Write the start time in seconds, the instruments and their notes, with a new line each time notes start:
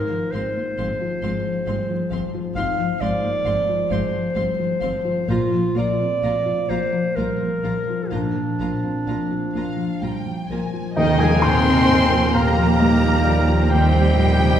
Already playing: felt piano G#2, harp G#2, clarinet A#4
0.11 felt piano F3, harp F4
0.31 double bass section G#1, cello section G#2, harp G#3, felt piano G#3, viola section C4, clarinet C5, violin section F5 C6
0.56 felt piano A#3, harp F4
0.78 double bass section G#1, cello section G#2, harp F3, felt piano G#3, viola section C4, violin section F5 C6
1.01 harp F4, felt piano F4
1.22 double bass section G#1, cello section G#2, harp F3, felt piano G#3, viola section C4, violin section F5 C6
1.45 felt piano F3, harp F4
1.67 double bass section G#1, cello section G#2, felt piano G3, harp G#3, viola section C4, violin section F5 C6
1.89 felt piano F3, harp F4
2.10 double bass section G#1, cello section G#2, harp F3, viola section C4, felt piano C5, violin section F5 C6
2.34 harp F4, felt piano F4
2.55 double bass section G#1, cello section G#2, harp G#2, felt piano G#2, viola section C4, violin section F5 C6, clarinet F5
2.78 harp F3, felt piano F3
2.99 double bass section G#1, cello section G#2, harp G#3, felt piano G#3, viola section C4, clarinet D5, violin section F5 C6
3.22 felt piano A#3, harp F4
3.44 double bass section G#1, cello section G#2, harp F3, felt piano G#3, viola section C4, violin section F5 C6
3.67 harp F4, felt piano F4
3.89 double bass section G#1, cello section G#2, harp F3, felt piano G#3, viola section C4, clarinet C5, violin section F5 C6
4.12 felt piano F3, harp F4
4.34 double bass section G#1, cello section G#2, felt piano G3, harp G#3, viola section C4, violin section F5 C6
4.58 felt piano F3, harp F4
4.81 double bass section G#1, cello section G#2, harp F3, viola section C4, felt piano C5, violin section F5 C6
5.04 harp F4, felt piano F4
5.28 double bass section A#1, felt piano A#2, harp A#2, cello section A#2, clarinet F4, viola section F4, violin section F5 A#5
5.51 felt piano F3, harp F4
5.74 double bass section A#1, cello section A#2, felt piano A#3, harp A#3, viola section F4, clarinet D5, violin section F5 A#5
6.00 felt piano C4, harp F4
6.23 double bass section A#1, cello section A#2, harp F3, felt piano A#3, viola section F4, violin section F5 A#5
6.46 felt piano F4, harp F4
6.69 double bass section A#1, cello section A#2, harp F3, felt piano A#3, viola section F4, clarinet C5, violin section F5 A#5
6.92 felt piano F3, harp F4
7.16 double bass section A#1, cello section A#2, felt piano G3, harp A#3, viola section F4, clarinet A#4, violin section F5 A#5
7.40 felt piano F3, harp F4
7.63 double bass section A#1, cello section A#2, harp F3, viola section F4, felt piano A#4, violin section F5 A#5
7.87 harp F4, felt piano F4
8.11 double bass section A#1, harp A#2, cello section A#2, felt piano A#2, clarinet D4, viola section F4, violin section F5 A#5
8.35 harp F3, felt piano F3
8.58 double bass section A#1, cello section A#2, harp A#3, felt piano A#3, viola section F4, violin section F5 A#5
8.83 felt piano C4, harp F4
9.07 double bass section A#1, cello section A#2, harp F3, felt piano A#3, viola section F4, violin section F5 A#5
9.30 harp F4, felt piano F4
9.54 double bass section A#1, cello section A#2, harp F3, felt piano A#3, viola section F4, violin section F5 A#5
9.77 felt piano F3, harp F4
10.02 double bass section A#1, cello section A#2, felt piano G3, harp A#3, viola section F4, violin section G5 A#5
10.26 felt piano F3, harp F4
10.48 double bass section A#1, cello section A#2, harp F3, viola section F4, felt piano A#4, violin section G#5 A#5
10.73 harp F4, felt piano F4
10.95 double bass section D#2, felt piano D#2 D#5, french horn section D#3, harp D#3, timpani D#3, cello section D#3, viola section A#3 A#4, oboe D#4, flute section A#4, violin section D#5, clarinet G5, tam-tam
10.99 violin section D#5
11.19 felt piano F3 G#5, french horn section G#3, cello section G#3, harp F4, oboe G#4, flute section F5, violin section G#5
11.42 felt piano A#2 C6, french horn section C4, cello section C4, harp D#4, oboe C5, flute section G#5, violin section C6
11.66 felt piano C3, harp F4
11.89 felt piano A#2, harp F3
12.12 harp F4, felt piano F4
12.33 felt piano A#2 A#5, harp F3, french horn section A#3, cello section A#3, viola section G4, oboe A#4, clarinet F5, flute section G5, violin section A#5
12.57 felt piano F3, harp F4
12.79 felt piano G3, harp D#4, clarinet D#5
13.03 felt piano F3, harp F4
13.25 harp F3, felt piano A#4, clarinet D5
13.48 harp F4, felt piano F4
13.70 felt piano D#2 G5, harp D#3, french horn section G3, cello section G3, viola section C4 G4, oboe G4, clarinet C5, flute section D#5, violin section G5
13.93 harp F3, felt piano F3
14.16 felt piano A#2, viola section A#3, harp D#4
14.38 felt piano C3, harp F4